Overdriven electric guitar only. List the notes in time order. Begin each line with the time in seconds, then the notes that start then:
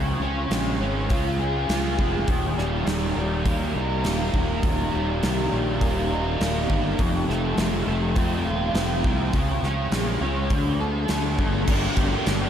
Already playing: C#3
0.22 C#4
0.51 G#3
0.81 C#4
1.11 F4
1.40 G#4
1.70 F4
1.98 G#3
2.28 D#2
2.58 G3
2.86 D#3
3.16 G3
3.45 A#3
3.75 D#4
4.05 A#3
4.34 D#3
4.63 D#2
4.92 G3
5.22 D#3
5.51 G3
5.81 A#3
6.12 D#4
6.41 A#3
6.69 D#3
6.99 F2
7.28 A3
7.58 F3
7.86 A3
8.16 C4
8.45 F4
8.75 C4
9.05 F3
9.33 C#3
9.64 C#4
9.92 G#3
10.22 C#4
10.51 D3
10.80 A4
11.08 F#4
11.39 A3
11.67 G2 D3 G3 A#3 D4 G4
11.98 G3 A#3 D4 G4
12.12 G3 A#3 D4 G4
12.26 G2 D3 G3 A#3 D4 G4
12.41 G3 A#3 D4 G4